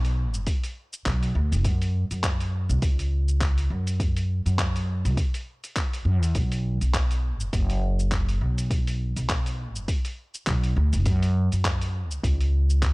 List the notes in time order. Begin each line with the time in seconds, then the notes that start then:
Already playing: B1
0.05 open hi-hat, shaker
0.34 F#1, shaker
0.47 kick, open hi-hat, shaker
0.64 open hi-hat, shaker
0.93 shaker
1.06 B1, kick, clap, open hi-hat, shaker
1.23 open hi-hat, shaker
1.35 D2
1.52 F#1, open hi-hat, shaker
1.64 F#2, kick, open hi-hat, shaker
1.82 open hi-hat, shaker
2.11 F#2, open hi-hat, shaker
2.23 kick, clap, open hi-hat, shaker
2.40 open hi-hat, shaker
2.69 C#2, shaker
2.82 C#2, kick, open hi-hat, shaker
2.99 open hi-hat, shaker
3.28 shaker
3.41 kick, clap, open hi-hat, shaker
3.58 open hi-hat, shaker
3.70 F#2
3.87 open hi-hat, shaker
4.00 kick, open hi-hat, shaker
4.17 open hi-hat, shaker
4.46 F#2, open hi-hat, shaker
4.59 kick, clap, open hi-hat, shaker
4.76 open hi-hat, shaker
5.05 C#2, open hi-hat, shaker
5.17 kick, open hi-hat, shaker
5.34 open hi-hat, shaker
5.64 open hi-hat, shaker
5.76 kick, clap, open hi-hat, shaker
5.94 open hi-hat, shaker
6.05 F#2
6.22 E2, open hi-hat, shaker
6.35 B1, kick, open hi-hat, shaker
6.52 open hi-hat, shaker
6.81 B1, open hi-hat, shaker
6.94 kick, clap, open hi-hat, shaker
7.11 open hi-hat, shaker
7.40 F#1, shaker
7.53 F#1, kick, open hi-hat, shaker
7.70 open hi-hat, shaker
7.99 shaker
8.12 kick, clap, open hi-hat, shaker
8.29 open hi-hat, shaker
8.41 B1
8.58 open hi-hat, shaker
8.71 kick, open hi-hat, shaker
8.88 open hi-hat, shaker
9.16 B1, open hi-hat, shaker
9.29 kick, clap, open hi-hat, shaker
9.46 open hi-hat, shaker
9.75 F#1, shaker
9.88 kick, open hi-hat, shaker
10.05 open hi-hat, shaker
10.34 shaker
10.47 B1, kick, clap, open hi-hat, shaker
10.64 open hi-hat, shaker
10.76 D2
10.93 F#1, open hi-hat, shaker
11.06 F#2, kick, open hi-hat, shaker
11.22 open hi-hat, shaker
11.52 F#2, open hi-hat, shaker
11.65 kick, clap, open hi-hat, shaker
11.81 open hi-hat, shaker
12.11 C#2, shaker
12.23 C#2, kick, open hi-hat, shaker
12.41 open hi-hat, shaker
12.70 shaker
12.82 kick, clap, open hi-hat, shaker